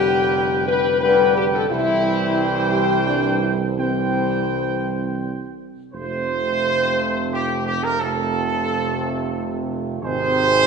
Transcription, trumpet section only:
Already playing: B4 G5
1.02 B4 G5
1.69 C5 G5
3.77 C5 G5
5.93 C5
7.32 G4
7.65 G4
7.83 A#4
7.99 A4
10.02 C5

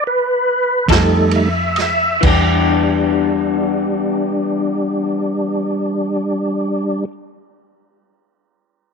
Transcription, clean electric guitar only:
0.90 F3 C4 D#4 A4
2.21 E3 B3
2.27 D4 G4

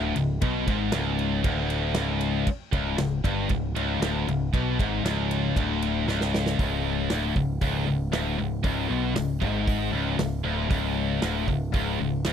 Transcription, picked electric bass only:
Already playing: D1
0.16 C#1
0.42 B1
0.67 G#1
0.93 C#1
1.44 D1
1.95 C#1
2.73 C#1
2.98 C#1
3.24 G1
3.50 C#1
3.74 C#1
4.00 D1
4.27 C#1
4.53 B1
4.79 G#1
5.03 C#1
5.56 D1
6.07 C#1
6.59 C#1
7.11 D1
7.36 C#1
7.62 C#1
7.88 C#1
8.14 D1
8.40 C#1
8.64 C#1
8.90 B1
9.17 C#1
9.42 G#1
9.93 C#1
10.19 C#1
10.44 D1
10.70 C#1
11.22 D1
11.48 C#1
11.74 C#1
12.01 C#1
12.26 D1

